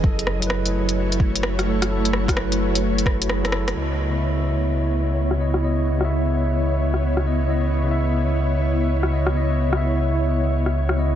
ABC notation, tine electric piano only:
X:1
M:4/4
L:1/16
Q:"Swing 16ths" 1/4=129
K:C#m
V:1 name="Tine electric piano"
[F,EA]3 [F,EB]8- [F,EB]3 [F,EA]2 | [F,EA]3 [F,EB]8- [F,EB] [F,EG] [F,EA]3 | [C,B,Ed]3 [C,B,Ee]8- [C,B,Ee]3 [C,B,Ed]2 | [C,B,Ed]3 [C,B,Ee]8- [C,B,Ee]3 [C,B,Ed]2 |
[C,B,Ed]3 [C,B,Ee]8- [C,B,Ee]3 [C,B,Ed]2 | [C,B,Ed]3 [C,B,Ee]8- [C,B,Ee]3 [C,B,Ed]2 |]